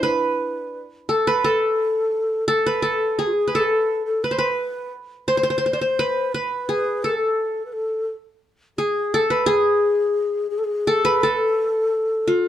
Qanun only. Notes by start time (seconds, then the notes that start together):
Already playing: D4 E4
0.03 B4
1.09 A4
1.27 B4
1.44 A4
2.48 A4
2.66 B4
2.82 A4
3.19 G#4
3.48 B4
3.55 A4
4.24 B4
4.31 C5
4.38 B4
5.28 C5
5.37 C5
5.43 C5
5.50 C5
5.58 C5
5.66 C5
5.73 C5
5.81 C5
5.99 B4
6.34 B4
6.69 G#4
7.04 A4
8.78 G#4
9.14 A4
9.30 B4
9.46 G#4
10.87 A4
11.05 B4
11.23 A4
12.28 F4